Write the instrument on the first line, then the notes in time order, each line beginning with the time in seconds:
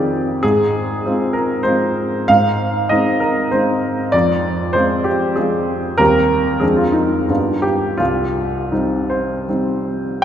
grand piano
Already playing: F2 D#3 C4 F4 G4 G#4 C5 D5
0.43 G#2 G#4
1.05 G#3 C4 F4
1.33 A#4
1.63 G#3 C4 F4 C5
2.28 G#2 F5
2.89 G#3 C4 D#4 D#5
3.20 A#4
3.51 G#3 C4 D#4 C5
4.12 F2 D5
4.73 G#3 C4 F4 C5
5.04 G4
5.36 G#3 C4 F4 G#4
5.98 D#2 G3 C4 G4 A#4
6.60 F2 G#3 C4 D4 G#4
6.76 F4
6.92 D#4
7.28 G2 G3 B3 D4 F4
7.62 G4
7.97 C2 F4
8.72 G3 C4 D#4
9.10 C5
9.49 G3 C4 D#4